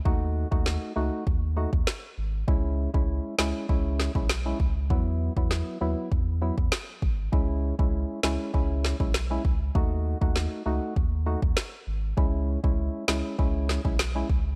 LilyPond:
<<
  \new Staff \with { instrumentName = "Synth stab" } { \time 4/4 \key cis \minor \tempo 4 = 99 <a dis' fis'>8. <a dis' fis'>8. <a dis' fis'>8 r8 <a dis' fis'>16 r4 r16 | <gis cis' e'>8. <gis cis' e'>8. <gis cis' e'>8 <gis cis' e'>8. <gis cis' e'>16 r16 <gis cis' e'>16 r8 | <fis b e'>8. <fis b e'>8. <fis b e'>8 r8 <fis b e'>16 r4 r16 | <gis cis' e'>8. <gis cis' e'>8. <gis cis' e'>8 <gis cis' e'>8. <gis cis' e'>16 r16 <gis cis' e'>16 r8 |
<a dis' fis'>8. <a dis' fis'>8. <a dis' fis'>8 r8 <a dis' fis'>16 r4 r16 | <gis cis' e'>8. <gis cis' e'>8. <gis cis' e'>8 <gis cis' e'>8. <gis cis' e'>16 r16 <gis cis' e'>16 r8 | }
  \new Staff \with { instrumentName = "Sub bass" } { \clef bass \time 4/4 \key cis \minor dis,8. dis,8 r16 cis,16 r16 dis,8. dis,16 r8 gis,,8 | cis,8. cis,8 r16 cis,16 r16 cis,8. b,,8. cis,8 | e,8. e,8 r16 dis,16 r16 e,8. e,16 r8 gis,,8 | cis,8. cis,8 r16 cis,16 r16 cis,8. b,,8. cis,8 |
dis,8. dis,8 r16 cis,16 r16 dis,8. dis,16 r8 gis,,8 | cis,8. cis,8 r16 cis,16 r16 cis,8. b,,8. cis,8 | }
  \new DrumStaff \with { instrumentName = "Drums" } \drummode { \time 4/4 bd8. bd16 sn4 bd8. bd16 sn4 | bd8. bd16 r8 sn8 bd8 sn16 bd16 sn8 bd8 | bd8. bd16 sn4 bd8. bd16 sn8 bd8 | bd8. bd16 r8 sn8 bd8 sn16 bd16 sn8 bd8 |
bd8. bd16 sn4 bd8. bd16 sn4 | bd8. bd16 r8 sn8 bd8 sn16 bd16 sn8 bd8 | }
>>